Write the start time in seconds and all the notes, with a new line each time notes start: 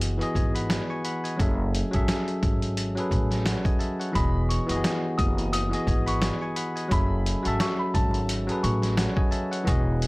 Already playing: F#1 E3 B3 F#4 G4 G#4 C#5 D#5 F#5
0.01 closed hi-hat
0.18 E3 B3 F#4 G#4, closed hi-hat
0.23 D#5
0.35 G#1 D#5 G#5, kick, closed hi-hat
0.55 F#5 B5, closed hi-hat
0.70 snare, closed hi-hat
0.90 G#5 C#6
1.05 F#5 B5, closed hi-hat
1.24 D#5 G#5, closed hi-hat
1.37 F#1 F#3 C#4 G#4 A4, kick, closed hi-hat
1.41 E5
1.75 closed hi-hat
1.91 G#1 F#3 C#4 G#4 A4, kick, closed hi-hat
1.96 E5
2.08 snare, closed hi-hat
2.28 closed hi-hat
2.43 G#1, kick, closed hi-hat
2.62 closed hi-hat
2.77 closed hi-hat
2.95 F#3 C#4 G#4 A4, closed hi-hat
3.00 B4
3.11 A1, kick, closed hi-hat
3.31 snare, closed hi-hat
3.45 C#5 F#5, snare, closed hi-hat
3.65 D#5 G#5, kick, closed hi-hat
3.79 E5 A5, closed hi-hat
4.00 C#5 F#5, closed hi-hat
4.12 E1 E3 B3 F#4 G#4 B5, kick, closed hi-hat
4.17 D#5
4.49 C#6, closed hi-hat
4.66 F#1 E3 B3 F#4 G4, closed hi-hat
4.71 D#5
4.77 G#4
4.84 snare, closed hi-hat
5.18 F#1 D#6, kick, closed hi-hat
5.38 closed hi-hat
5.53 D#6, closed hi-hat
5.70 E3 B3 F#4 G#4, closed hi-hat
5.74 D#5
5.87 G#1 D#5 G#5, kick, closed hi-hat
6.06 F#5 B5 C#6, closed hi-hat
6.22 snare, closed hi-hat
6.42 G#5 C#6
6.56 F#5 B5, closed hi-hat
6.76 D#5 G#5, closed hi-hat
6.88 F#1 F#3 C#4 G#4 A4 B5, kick, closed hi-hat
6.93 E5
7.26 closed hi-hat
7.43 G#1 F#3 C#4 F#4 A4 A5, closed hi-hat
7.48 E5
7.60 C#6, snare, closed hi-hat
7.79 B5
7.94 G#1 A5, kick, closed hi-hat
8.14 closed hi-hat
8.29 closed hi-hat
8.47 F#3 C#4 G#4 A4, closed hi-hat
8.52 B4
8.63 A1 C#6, closed hi-hat
8.82 snare, closed hi-hat
8.97 C#5 F#5, snare, closed hi-hat
9.16 D#5 G#5, kick
9.31 E5 A5, closed hi-hat
9.51 C#5 F#5, closed hi-hat
9.64 E1 E3 B3 F#4 G#4, kick, closed hi-hat
9.69 D#5
10.02 closed hi-hat